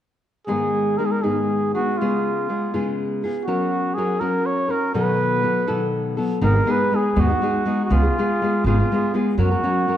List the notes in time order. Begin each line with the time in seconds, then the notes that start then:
0.47 G#2 D#3 G#3 B3 D#4 G#4
0.98 G#3 B3 D#4 G#4 A#4
1.06 G#4
1.12 A#4
1.23 G#2 D#3 G#3 B3 D#4 G#4
1.75 G#3 B3 D#4 F#4 G#4
1.98 C#3 G#3 B3 F4
2.02 G#4
2.49 G#3 B3 F4 G#4
2.74 C#3 G#3 B3 F4 G#4
3.24 B3 F4 G#4
3.45 F#3 C#4 F#4 A#4
3.95 F#3 C#4 F#4 G#4 A#4
4.20 F#3 C#4 F#4 A#4
4.46 C#5
4.68 C#4 F#4 A#4
4.94 B2 D#3 F#3 B3 F#4 A4 B4
5.43 F#3 B3 F#4 A4
5.67 B2 D#3 F#3 B3 F#4 A4
6.17 F#3 B3 F#4 A4
6.41 G#1 G#2 D#3 G#3 B3 D#4 G#4 A#4
6.55 G#3 B3 D#4 G#4
6.65 G#3 B3 D#4 G#4
6.71 B4
6.91 G#3 B3 D#4 G#4
6.96 G#4
7.16 D#2 G#2 D#3 G#3 B3 D#4 G#4
7.20 F#4
7.28 G#3 B3 D#4 G#4
7.41 G#3 B3 D#4 G#4
7.65 G#3 B3 D#4 G#4
7.85 F#4
7.89 C#2 C#3 G#3 B3 F4 G#4
8.03 B3 F4 G#4
8.18 G#3 B3 F4 G#4
8.42 G#3 B3 F4 G#4
8.64 G#1 C#3 G#3 B3 F4 G#4
8.79 B3 F4 G#4
8.92 G#3 B3 F4 G#4
9.14 G#3 B3 F4 G#4
9.38 F#2 F#3 C#4 F#4 A#4
9.51 C#4 A#4
9.64 F#3 C#4 F#4 A#4
9.88 F#3 C#4 F#4 A#4